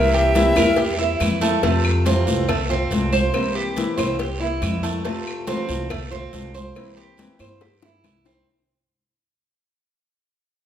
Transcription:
Already playing: C2 C3 E3 A#3 C4 E4 A#4 E5
0.14 G4, high conga
0.34 C3 E3 A#3 C4 E4, cowbell, high conga, short guiro
0.56 E2 E3 A#3 C4 E4 A#4, cowbell, high conga, short guiro, claves
0.76 G4, muted nylon-string guitar stroke, cowbell, high conga, long guiro
0.99 A#3 C4 E4, high conga
1.20 F2 E3 A#3 C4 E4, cowbell, high conga, short guiro, claves
1.41 A3 A#3 C4 E4, cowbell, short guiro
1.62 F2 C3 A3 C4 F4, cowbell, high conga, long guiro
1.85 high conga, claves
2.05 C3 E3 A3 C4 F4, cowbell, high conga, short guiro
2.26 C2 E3 A3 C4 F4, high conga, short guiro
2.48 A3, muted nylon-string guitar stroke, cowbell, high conga, low conga, long guiro, claves
2.69 A3 C4 F4, high conga, low conga
2.90 C2 E3 A3 C4 F4, cowbell, high conga, short guiro
3.12 A3 C4 F4 C5, high conga, short guiro
3.33 C3 E3 A#3 C4 E4, cowbell, high conga, long guiro, claves
3.55 G4, high conga
3.75 C3 E3 A#3 C4 E4, cowbell, high conga, short guiro
3.97 C2 E3 A#3 C4 E4 C5, cowbell, high conga, short guiro, claves
4.19 G4, muted nylon-string guitar stroke, cowbell, high conga, long guiro
4.40 A#3 C4 E4, high conga
4.61 F2 E3 A#3 C4 E4, cowbell, high conga, short guiro, claves
4.83 A3 A#3 C4 E4, cowbell, short guiro
5.04 C3 A3 C4 F4, cowbell, high conga, long guiro
5.27 high conga, claves
5.47 C3 E3 A3 C4 F4, cowbell, high conga, short guiro
5.67 C2 E3 A3 C4 F4, high conga, short guiro
5.89 A3, muted nylon-string guitar stroke, cowbell, high conga, low conga, long guiro, claves
6.11 A3 C4 F4, high conga, low conga
6.32 C2 E3 A3 C4 F4, cowbell, high conga, short guiro
6.54 A3 C4 F4 C5, high conga, short guiro
6.75 C3 E3 A#3 C4 E4, cowbell, long guiro, claves
6.97 G4, high conga
7.17 C3 E3 A#3 C4 E4, cowbell, high conga, short guiro
7.39 G2 E3 A#3 C4 E4 C5, cowbell, high conga, short guiro, claves
7.60 G4, muted nylon-string guitar stroke, cowbell, high bongo, high conga, long guiro
7.82 A#3 C4 E4, low bongo, high conga
8.03 C2 E3 A#3 C4 E4, cowbell, low bongo, high conga, short guiro, claves
8.24 A#3 C4 E4, cowbell, low bongo, short guiro

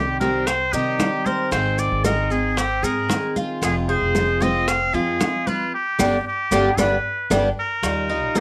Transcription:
Already playing: C2 D#3 G3 C4 G4
0.20 D#3 G3 C4 G4 A#4, high conga, maracas
0.47 C5, muted steel-string acoustic guitar stroke, high bongo, high conga, maracas
0.73 C3 D#3 G3 C4 D#4 G4, high conga, maracas
0.99 D#3 G3 C4 G4, high bongo, low bongo, high conga, claves, maracas
1.26 A#4 C5, high conga, maracas
1.51 G#1 D#3 G#3 C4 G#4 C5, high bongo, high conga, maracas
1.78 D5, high bongo, high conga, maracas
1.91 G#1
2.04 D#3 G#3 C4 D#4 G#4 A#4, high bongo, high conga, claves, maracas
2.30 G#3 C4 G#4, high conga, maracas
2.57 C4 G4, muted steel-string acoustic guitar stroke, high bongo, high conga, maracas
2.83 G#2 G#3 C4 G#4 A#4, high bongo, high conga, claves, maracas
3.08 D#3 G#3 C4 G#4, high bongo, low bongo, high conga, maracas
3.36 F4, high bongo, high conga, maracas
3.61 F1 C3 F3 G#3 C4 F4 G#4, high bongo, high conga, claves, maracas
3.89 G#4 C5, high conga
4.01 F1
4.15 F3 G#3 C4 F4, high bongo, high conga, claves, maracas
4.40 F3 G#3 C4 F4 D#5, high conga, maracas
4.67 F5, muted steel-string acoustic guitar stroke, high bongo, high conga, maracas
4.93 F2 F3 G#3 C4 F4 G#4, high conga
5.19 F3 G#3 C4 F4, high bongo, low bongo, high conga, claves, maracas
5.47 F4 B4, high conga, maracas
5.75 G4
5.99 G1 D3 G3 B3 D4 G4, high bongo, high conga, claves, maracas
6.27 G4
6.51 G1 D3 G3 B3 D4 G4, high bongo, high conga, claves, maracas
6.77 G1 D3 G3 B3 D4 G4 B4, high bongo, high conga, claves, maracas
7.30 G1 D3 G3 B3 D4 G4, high bongo, high conga, claves, maracas
7.59 A#4
7.82 D#2 D#3 G3 D#4 F4, high bongo, high conga, claves, maracas
8.09 G3 D#4 F4, high conga
8.22 A#1
8.35 A#3, high bongo, high conga, claves, maracas

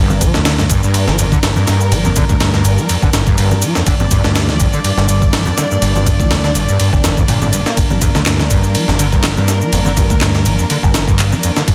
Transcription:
Already playing: G1 G2 G3 A#3 D4 A#4
0.10 high conga, shaker
0.21 F3, kick, ride, low conga, shaker
0.34 D2 F2, snare, shaker
0.45 D3, snare, ride, shaker
0.59 G2, snare, shaker
0.70 G1 G2, kick, ride, shaker
0.83 G2, shaker
0.94 muted picked electric bass stroke, ride, shaker
1.08 G1 F3, snare, shaker
1.19 F2, ride, shaker
1.32 D3, kick, shaker
1.43 G1 G2, snare, ride, shaker
1.56 G2, high conga, shaker
1.67 G2, snare, ride, shaker
1.81 shaker
1.92 G1 F3, ride, shaker
2.05 F2, high conga, shaker
2.16 D3, kick, ride, low conga, shaker
2.29 D2 G2, kick, shaker
2.40 G2, snare, ride, shaker
2.54 G2, snare, shaker
2.65 G1, ride, shaker
2.78 F3, shaker
2.89 F2, ride, shaker
3.02 G1 D3, kick, shaker
3.13 G2, snare, ride, shaker
3.26 G2, kick, shaker
3.38 G1 G2, ride, shaker
3.51 high conga, shaker
3.62 F3, ride, shaker
3.75 F2, snare, shaker
3.86 G1 D3 D5, kick, ride, shaker
4.00 G2, high conga, shaker
4.11 G2, kick, ride, low conga, shaker
4.24 D2 G2, snare, shaker
4.35 snare, ride, shaker
4.49 F3, snare, shaker
4.60 G1 F2, kick, ride, shaker
4.73 D3, shaker
4.84 G2, muted picked electric bass stroke, ride, shaker
4.97 G1 G2, snare, shaker
5.09 G2, ride, shaker
5.22 kick, shaker
5.33 G1 F3, snare, ride, shaker
5.46 F2, high conga, shaker
5.58 D3, snare, ride, shaker
5.71 G2, shaker
5.82 G1 G2, ride, shaker
5.95 G2, high conga, shaker
6.06 kick, ride, low conga, shaker
6.20 D2 F3, kick, shaker
6.31 F2, snare, ride, shaker
6.44 D3, snare, shaker
6.55 G1 G2, ride, shaker
6.68 G2, shaker
6.80 G2, ride, shaker
6.93 G1, kick, shaker
7.04 F2, snare, ride, shaker
7.17 F2, kick, shaker
7.28 G1 A#2, ride, shaker
7.42 A2, high conga, shaker
7.53 G2, ride, shaker
7.66 A#3, snare, shaker
7.77 G1 A#4, kick, ride, shaker
7.90 F3, high conga, shaker
8.01 F2, kick, ride, low conga, shaker
8.15 D2 D3, snare, shaker
8.26 G2, snare, clap, ride, shaker
8.39 G3, snare, shaker
8.50 G1 G2, kick, ride, shaker
8.63 shaker
8.75 F3, muted picked electric bass stroke, ride, shaker
8.88 G1 F2, snare, shaker
8.99 D3, ride, shaker
9.12 G2, kick, shaker
9.24 G1 G3, snare, clap, ride, shaker
9.37 G2, high conga, shaker
9.48 snare, ride, shaker
9.61 F3, shaker
9.73 G1 F2, ride, shaker
9.85 D3, high conga, shaker
9.97 G2, kick, ride, low conga, shaker
10.10 D2 G3, kick, shaker
10.21 G2, snare, clap, ride, shaker
10.34 snare, shaker
10.45 G1 F3, ride, shaker
10.59 F2, shaker
10.70 D3, ride, shaker
10.83 G1 G2, kick, shaker
10.94 G3, snare, ride, shaker
11.08 G2, kick, shaker
11.19 G1, clap, ride, shaker
11.32 F3, high conga, shaker
11.43 F2, ride, shaker
11.56 D3, snare, shaker
11.67 G1 G2 F4, kick, ride, shaker

